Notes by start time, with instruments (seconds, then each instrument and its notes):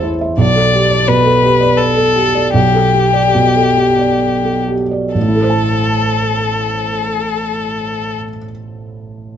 Already playing: felt piano A1 E2 E4 C5 E5
0.03 felt piano E4
0.21 felt piano E5
0.38 felt piano B1, violin D5
0.56 felt piano A4
0.73 felt piano G4
0.91 felt piano D5
1.08 felt piano B2, violin B4
1.25 felt piano A4
1.43 felt piano G4
1.61 felt piano D5
1.78 violin A4
1.96 felt piano A4
2.15 felt piano G4
2.35 felt piano D5
2.54 felt piano B1, violin G4
2.74 felt piano A4
2.94 felt piano G4
3.14 felt piano D5
3.35 felt piano B2
3.56 felt piano A4
3.77 felt piano G4
3.99 felt piano D5
4.44 felt piano A4
4.68 felt piano G4
4.91 felt piano D5
5.14 felt piano A1, violin A4
5.22 felt piano A2
5.28 felt piano E4
5.35 felt piano A4
5.42 felt piano C5
5.50 felt piano A5